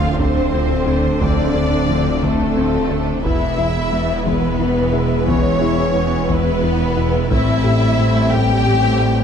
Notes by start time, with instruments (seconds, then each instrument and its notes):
Already playing: detuned saw bass D1, double bass section D2, cello section D3, viola section F3 C4, french horn section A3 C4, violin section F4 F5, sub drop
0.18 analog synth bass D2, synth arpeggio sound D3, viola section A3 D4, violin section C4 C5, taiko
0.53 analog synth bass D2, viola section F3 C4, synth arpeggio sound C4
0.87 analog synth bass D2, viola section A3 D4, synth arpeggio sound C4
1.21 analog synth bass D2, synth arpeggio sound D3, viola section F3 C4, violin section D4 D5, taiko
1.55 analog synth bass D2, viola section A3 D4, synth arpeggio sound C4
1.89 analog synth bass D2, viola section F3 C4, synth arpeggio sound F3
2.23 analog synth bass D2, synth arpeggio sound D3, violin section A3 A4, viola section A3 D4, taiko
2.57 analog synth bass D2, viola section F3 C4, synth arpeggio sound C4
2.91 analog synth bass D2, viola section A3 D4, synth arpeggio sound C4
3.24 detuned saw bass E1, double bass section E1, cello section E2, analog synth bass E2, synth arpeggio sound E3, viola section E3 B3, french horn section G#3 B3, violin section E4 E5, taiko
3.58 analog synth bass E2, viola section G#3 E4, synth arpeggio sound E4
3.92 analog synth bass E2, viola section E3 B3, synth arpeggio sound G#3
4.26 analog synth bass E2, synth arpeggio sound E3, viola section G#3 E4, violin section B3 B4, taiko
4.60 analog synth bass E2, viola section E3 B3, synth arpeggio sound E4
4.93 analog synth bass E2, viola section G#3 E4, synth arpeggio sound E4
5.27 analog synth bass E2, viola section E3 B3, synth arpeggio sound E3, violin section C#4 C#5, taiko
5.61 analog synth bass E2, viola section G#3 E4, synth arpeggio sound E4
5.95 analog synth bass E2, viola section E3 B3, synth arpeggio sound G#3
6.29 analog synth bass E2, synth arpeggio sound E3, viola section G#3 E4, violin section B3 B4, taiko
6.64 analog synth bass E2, viola section E3 B3, synth arpeggio sound E4
6.97 analog synth bass E2, viola section G#3 E4, synth arpeggio sound E4
7.30 detuned saw bass A1, double bass section A1, cello section A2, analog synth bass A2, french horn section G3 C4, synth arpeggio sound A3, viola section A3 C4, violin section E4 E5, taiko
7.64 analog synth bass A2, viola section G3 A3, synth arpeggio sound G4
7.99 analog synth bass A2, viola section A3 C4, synth arpeggio sound C4
8.32 analog synth bass A2, viola section G3 A3, synth arpeggio sound A3, violin section G4 G5, taiko
8.66 analog synth bass A2, viola section A3 C4, synth arpeggio sound G4
9.00 analog synth bass A2, viola section G3 A3, synth arpeggio sound G4